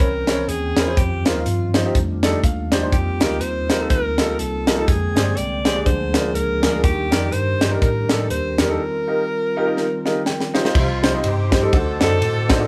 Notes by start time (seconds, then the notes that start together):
Already playing: E3 C4 C#4 G5
0.00 C2 A#4, kick, closed hi-hat
0.27 C4 C#4 E4 C#5, snare, closed hi-hat
0.48 D#2 G#4, closed hi-hat
0.76 E2 C4 C#4 E4 A#4, snare, closed hi-hat
0.87 C4 C#4 E4 C5
0.97 F2 D#3 F3 F4 G4, kick, closed hi-hat
1.25 D#2 C4 D#4 F4 A#4, snare, closed hi-hat
1.46 G2, closed hi-hat
1.74 C4 D#4 F4 C5, snare, closed hi-hat
1.85 C4 D#4 F4 G4
1.95 F2 D#3 G3 A3 D4, kick, closed hi-hat
2.23 D4 D#4 G4 A4, snare, closed hi-hat
2.44 D#2 F5, kick, closed hi-hat
2.71 E2 D4 D#4 G4 C5 C6, snare, closed hi-hat
2.82 D4 D#4 G4 C5
2.92 F2 A#3 C4 D#4 F4 G4, kick, closed hi-hat
3.20 D2 D#4 F4 G4 A#4, snare, closed hi-hat
3.41 D#2 C5, closed hi-hat
3.69 D#4 F4 G4 A#4, snare, closed hi-hat
3.79 D#4 F4 G4 A4
3.90 D2 A#4, kick, closed hi-hat
4.18 D#4 F4 G4 A4, snare, closed hi-hat
4.39 C2 A4, closed hi-hat
4.67 D#4 F4 G4 A#4, snare, closed hi-hat
4.78 D#4 F4 G4 A4
4.88 F2 D3 G#3 A#3 G#4 G5, kick, closed hi-hat
5.15 G2 D4 G4 G#4 C5, snare, closed hi-hat
5.37 C2 D5, closed hi-hat
5.65 D4 G4 G#4 C5, snare, closed hi-hat
5.75 D4 G4 G#4 D5
5.85 D2 D3 F3 D4 G#4 C5, kick, closed hi-hat
6.13 D4 F4 G#4 A#4, snare, closed hi-hat
6.35 C#2 A#4, closed hi-hat
6.62 D2 D4 F4 G#4 A#4, snare, closed hi-hat
6.72 D4 F4 G#4 A#4
6.83 D#2 D#3 G3 G4 A#4, kick, closed hi-hat
7.11 F2 D4 D#4 G4 A#4, snare, closed hi-hat
7.32 G2 C5, closed hi-hat
7.61 D4 D#4 G4 C5, snare, closed hi-hat
7.70 D4 D#4 G4 A#4
7.82 A2 A#4, kick, closed hi-hat
8.09 D4 D#4 G4 A4, snare, closed hi-hat
8.21 A4
8.30 D#2 C5, closed hi-hat
8.58 E2 D4 D#4 G4 A#4, snare, closed hi-hat
8.68 D4 D#4 G4 A4
8.79 C4 F4
9.07 D#4 F4 G4 A#4
9.56 D#4 F4 G4 A#4
9.67 D#4 F4 G4 A#4
9.77 snare
10.05 D#4 F4 G4 A#4, snare
10.26 G5, snare
10.40 snare
10.54 D#4 F4 G4 C5 F5, snare
10.64 D#4 F4 G4 C5, snare
10.75 C2 C3 C4 F4 G4 C5 D#5 C6, kick, crash
11.03 G3 C4 D#4 G4 C5, snare, ride
11.12 G3 C4 D#4 G4 D#5
11.24 G2 C4 D#4 G4, ride
11.51 G3 C4 D#4 G4 C5, kick, snare, ride
11.62 G3 C4 D#4 G4 A4
11.73 D2 D3 C4 F#4 A4 D#5 F#5 D6, kick, ride
12.01 F#2 C4 D4 D#4 F#4 A4, snare, ride
12.21 A2, ride
12.49 C4 D4 D#4 F#4 C5, kick, snare, ride
12.59 C4 D4 D#4 F#4 A4